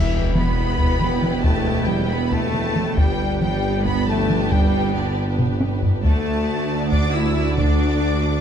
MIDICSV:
0, 0, Header, 1, 10, 480
1, 0, Start_track
1, 0, Key_signature, 1, "minor"
1, 0, Tempo, 437956
1, 1575, Time_signature, 7, 3, 24, 8
1, 9214, End_track
2, 0, Start_track
2, 0, Title_t, "Violin section"
2, 0, Program_c, 0, 48
2, 0, Note_on_c, 0, 76, 87
2, 350, Note_off_c, 0, 76, 0
2, 394, Note_on_c, 0, 83, 94
2, 1570, Note_on_c, 0, 81, 84
2, 1584, Note_off_c, 0, 83, 0
2, 2043, Note_off_c, 0, 81, 0
2, 2056, Note_on_c, 0, 79, 82
2, 2295, Note_off_c, 0, 79, 0
2, 2304, Note_on_c, 0, 83, 83
2, 2539, Note_off_c, 0, 83, 0
2, 2548, Note_on_c, 0, 81, 98
2, 3257, Note_on_c, 0, 79, 91
2, 3261, Note_off_c, 0, 81, 0
2, 3726, Note_off_c, 0, 79, 0
2, 3739, Note_on_c, 0, 79, 94
2, 4207, Note_off_c, 0, 79, 0
2, 4211, Note_on_c, 0, 83, 106
2, 4448, Note_off_c, 0, 83, 0
2, 4463, Note_on_c, 0, 81, 94
2, 4934, Note_on_c, 0, 79, 91
2, 4939, Note_off_c, 0, 81, 0
2, 5414, Note_off_c, 0, 79, 0
2, 5417, Note_on_c, 0, 74, 73
2, 5651, Note_off_c, 0, 74, 0
2, 6608, Note_on_c, 0, 81, 90
2, 7527, Note_off_c, 0, 81, 0
2, 7582, Note_on_c, 0, 86, 102
2, 7817, Note_on_c, 0, 88, 92
2, 7818, Note_off_c, 0, 86, 0
2, 8292, Note_on_c, 0, 86, 90
2, 8296, Note_off_c, 0, 88, 0
2, 9214, Note_off_c, 0, 86, 0
2, 9214, End_track
3, 0, Start_track
3, 0, Title_t, "Violin section"
3, 0, Program_c, 1, 48
3, 0, Note_on_c, 1, 67, 71
3, 0, Note_on_c, 1, 71, 62
3, 3212, Note_off_c, 1, 67, 0
3, 3216, Note_off_c, 1, 71, 0
3, 3263, Note_on_c, 1, 71, 63
3, 3266, Note_on_c, 1, 67, 69
3, 6575, Note_off_c, 1, 71, 0
3, 6577, Note_off_c, 1, 67, 0
3, 6622, Note_on_c, 1, 74, 70
3, 6629, Note_on_c, 1, 66, 68
3, 9214, Note_off_c, 1, 66, 0
3, 9214, Note_off_c, 1, 74, 0
3, 9214, End_track
4, 0, Start_track
4, 0, Title_t, "Viola section"
4, 0, Program_c, 2, 48
4, 0, Note_on_c, 2, 59, 68
4, 0, Note_on_c, 2, 64, 64
4, 3214, Note_off_c, 2, 59, 0
4, 3214, Note_off_c, 2, 64, 0
4, 3252, Note_on_c, 2, 62, 75
4, 3254, Note_on_c, 2, 59, 64
4, 6569, Note_off_c, 2, 62, 0
4, 6570, Note_off_c, 2, 59, 0
4, 6619, Note_on_c, 2, 62, 70
4, 6620, Note_on_c, 2, 57, 67
4, 9214, Note_off_c, 2, 57, 0
4, 9214, Note_off_c, 2, 62, 0
4, 9214, End_track
5, 0, Start_track
5, 0, Title_t, "Cello section"
5, 0, Program_c, 3, 48
5, 0, Note_on_c, 3, 52, 69
5, 349, Note_off_c, 3, 52, 0
5, 381, Note_on_c, 3, 59, 78
5, 1574, Note_on_c, 3, 57, 69
5, 1578, Note_off_c, 3, 59, 0
5, 2045, Note_off_c, 3, 57, 0
5, 2055, Note_on_c, 3, 55, 72
5, 2295, Note_off_c, 3, 55, 0
5, 2295, Note_on_c, 3, 59, 71
5, 2535, Note_off_c, 3, 59, 0
5, 2535, Note_on_c, 3, 57, 83
5, 3240, Note_off_c, 3, 57, 0
5, 3261, Note_on_c, 3, 55, 72
5, 3725, Note_off_c, 3, 55, 0
5, 3738, Note_on_c, 3, 55, 78
5, 4207, Note_off_c, 3, 55, 0
5, 4212, Note_on_c, 3, 59, 92
5, 4453, Note_off_c, 3, 59, 0
5, 4467, Note_on_c, 3, 57, 72
5, 4931, Note_off_c, 3, 57, 0
5, 4947, Note_on_c, 3, 55, 79
5, 5413, Note_on_c, 3, 50, 67
5, 5421, Note_off_c, 3, 55, 0
5, 5654, Note_off_c, 3, 50, 0
5, 6616, Note_on_c, 3, 57, 82
5, 7531, Note_off_c, 3, 57, 0
5, 7578, Note_on_c, 3, 62, 80
5, 7816, Note_off_c, 3, 62, 0
5, 7821, Note_on_c, 3, 64, 69
5, 8298, Note_off_c, 3, 64, 0
5, 8307, Note_on_c, 3, 62, 70
5, 9214, Note_off_c, 3, 62, 0
5, 9214, End_track
6, 0, Start_track
6, 0, Title_t, "French horn section"
6, 0, Program_c, 4, 60
6, 0, Note_on_c, 4, 52, 80
6, 346, Note_off_c, 4, 52, 0
6, 374, Note_on_c, 4, 59, 88
6, 1574, Note_off_c, 4, 59, 0
6, 1577, Note_on_c, 4, 57, 79
6, 2046, Note_off_c, 4, 57, 0
6, 2060, Note_on_c, 4, 55, 71
6, 2297, Note_off_c, 4, 55, 0
6, 2298, Note_on_c, 4, 59, 68
6, 2536, Note_off_c, 4, 59, 0
6, 2541, Note_on_c, 4, 57, 80
6, 3258, Note_off_c, 4, 57, 0
6, 3262, Note_on_c, 4, 55, 90
6, 3729, Note_off_c, 4, 55, 0
6, 3744, Note_on_c, 4, 55, 75
6, 4210, Note_off_c, 4, 55, 0
6, 4231, Note_on_c, 4, 59, 90
6, 4463, Note_off_c, 4, 59, 0
6, 4469, Note_on_c, 4, 57, 85
6, 4932, Note_off_c, 4, 57, 0
6, 4934, Note_on_c, 4, 55, 89
6, 5404, Note_off_c, 4, 55, 0
6, 5429, Note_on_c, 4, 50, 67
6, 5657, Note_off_c, 4, 50, 0
6, 6603, Note_on_c, 4, 57, 87
6, 7525, Note_off_c, 4, 57, 0
6, 7580, Note_on_c, 4, 62, 80
6, 7817, Note_on_c, 4, 64, 81
6, 7818, Note_off_c, 4, 62, 0
6, 8286, Note_off_c, 4, 64, 0
6, 8289, Note_on_c, 4, 62, 89
6, 9214, Note_off_c, 4, 62, 0
6, 9214, End_track
7, 0, Start_track
7, 0, Title_t, "Timpani"
7, 0, Program_c, 5, 47
7, 0, Note_on_c, 5, 40, 79
7, 572, Note_off_c, 5, 40, 0
7, 9214, End_track
8, 0, Start_track
8, 0, Title_t, "Double bass section"
8, 0, Program_c, 6, 48
8, 0, Note_on_c, 6, 28, 68
8, 3212, Note_off_c, 6, 28, 0
8, 3256, Note_on_c, 6, 31, 66
8, 6571, Note_off_c, 6, 31, 0
8, 6621, Note_on_c, 6, 38, 74
8, 9214, Note_off_c, 6, 38, 0
8, 9214, End_track
9, 0, Start_track
9, 0, Title_t, "Tuba"
9, 0, Program_c, 7, 58
9, 0, Note_on_c, 7, 28, 70
9, 3213, Note_off_c, 7, 28, 0
9, 3260, Note_on_c, 7, 31, 65
9, 6628, Note_on_c, 7, 38, 68
9, 6644, Note_off_c, 7, 31, 0
9, 9214, Note_off_c, 7, 38, 0
9, 9214, End_track
10, 0, Start_track
10, 0, Title_t, "Taiko and cinematic ensemble drums"
10, 382, Note_on_c, 9, 47, 61
10, 491, Note_off_c, 9, 47, 0
10, 859, Note_on_c, 9, 41, 75
10, 969, Note_off_c, 9, 41, 0
10, 1103, Note_on_c, 9, 47, 48
10, 1213, Note_off_c, 9, 47, 0
10, 1341, Note_on_c, 9, 47, 54
10, 1451, Note_off_c, 9, 47, 0
10, 1577, Note_on_c, 9, 41, 82
10, 1687, Note_off_c, 9, 41, 0
10, 2059, Note_on_c, 9, 47, 58
10, 2168, Note_off_c, 9, 47, 0
10, 2536, Note_on_c, 9, 41, 75
10, 2645, Note_off_c, 9, 41, 0
10, 2781, Note_on_c, 9, 47, 43
10, 2890, Note_off_c, 9, 47, 0
10, 3023, Note_on_c, 9, 47, 48
10, 3132, Note_off_c, 9, 47, 0
10, 3259, Note_on_c, 9, 41, 93
10, 3369, Note_off_c, 9, 41, 0
10, 3743, Note_on_c, 9, 47, 57
10, 3853, Note_off_c, 9, 47, 0
10, 4221, Note_on_c, 9, 41, 73
10, 4331, Note_off_c, 9, 41, 0
10, 4468, Note_on_c, 9, 47, 45
10, 4577, Note_off_c, 9, 47, 0
10, 4710, Note_on_c, 9, 47, 58
10, 4819, Note_off_c, 9, 47, 0
10, 4951, Note_on_c, 9, 41, 92
10, 5060, Note_off_c, 9, 41, 0
10, 5905, Note_on_c, 9, 45, 76
10, 6014, Note_off_c, 9, 45, 0
10, 6142, Note_on_c, 9, 48, 78
10, 6252, Note_off_c, 9, 48, 0
10, 6384, Note_on_c, 9, 43, 70
10, 6494, Note_off_c, 9, 43, 0
10, 6624, Note_on_c, 9, 41, 84
10, 6733, Note_off_c, 9, 41, 0
10, 7588, Note_on_c, 9, 41, 68
10, 7697, Note_off_c, 9, 41, 0
10, 8304, Note_on_c, 9, 41, 92
10, 8414, Note_off_c, 9, 41, 0
10, 9214, End_track
0, 0, End_of_file